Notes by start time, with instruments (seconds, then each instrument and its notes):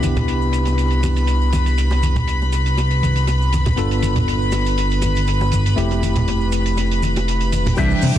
Already playing: analog synth bass C2, tine electric piano B3 D4 E4 G4, string section B4 B5
0.03 closed hi-hat, high conga, maracas
0.17 closed hi-hat, high bongo, low conga, maracas
0.28 closed hi-hat, maracas
0.42 maracas
0.53 closed hi-hat, maracas
0.65 closed hi-hat, high bongo, maracas
0.78 closed hi-hat, maracas
0.91 closed hi-hat, maracas
1.03 closed hi-hat, high bongo, high conga, maracas
1.16 closed hi-hat, maracas
1.27 closed hi-hat, maracas
1.41 maracas
1.53 closed hi-hat, high bongo, high conga, maracas
1.66 closed hi-hat, maracas
1.78 closed hi-hat, maracas
1.91 closed hi-hat, high bongo, maracas
2.03 closed hi-hat, high conga, maracas
2.16 closed hi-hat, low conga, maracas
2.28 closed hi-hat, maracas
2.42 high bongo, maracas
2.52 closed hi-hat, maracas
2.66 closed hi-hat, maracas
2.77 closed hi-hat, high bongo, maracas
2.91 closed hi-hat, maracas
3.03 closed hi-hat, high conga, maracas
3.16 closed hi-hat, maracas
3.27 closed hi-hat, high bongo, maracas
3.42 maracas
3.53 closed hi-hat, high conga, maracas
3.66 closed hi-hat, high bongo, low conga, maracas
3.76 analog synth bass G1, tine electric piano B3 D4 F4 A4, closed hi-hat, maracas
3.91 closed hi-hat, maracas
4.03 closed hi-hat, high conga, maracas
4.16 closed hi-hat, high bongo, low conga, maracas
4.28 closed hi-hat, maracas
4.42 maracas
4.52 closed hi-hat, high bongo, maracas
4.66 closed hi-hat, maracas
4.78 closed hi-hat, maracas
4.91 closed hi-hat, maracas
5.02 closed hi-hat, high bongo, high conga, maracas
5.16 closed hi-hat, maracas
5.27 closed hi-hat, maracas
5.41 high bongo, maracas
5.52 closed hi-hat, high conga, maracas
5.66 closed hi-hat, maracas
5.76 analog synth bass F1, tine electric piano A3 C4 E4 G4, closed hi-hat, maracas
5.91 closed hi-hat, high bongo, maracas
6.03 closed hi-hat, high conga, maracas
6.16 closed hi-hat, low conga, maracas
6.28 closed hi-hat, high bongo, maracas
6.41 maracas
6.52 closed hi-hat, maracas
6.66 closed hi-hat, maracas
6.77 closed hi-hat, high bongo, maracas
6.91 closed hi-hat, maracas
7.02 closed hi-hat, high conga, maracas
7.16 closed hi-hat, high bongo, maracas
7.28 closed hi-hat, maracas
7.41 closed hi-hat, maracas
7.52 closed hi-hat, high conga, maracas
7.66 closed hi-hat, high bongo, low conga, maracas
7.77 analog synth bass C2, tine electric piano E3 G3 D4, clean electric guitar G4 B4 C5 E5, string section G4 G5, kick, closed hi-hat, crash, high bongo, maracas
7.91 maracas
8.02 analog synth bass C3, open hi-hat, high conga, maracas
8.16 maracas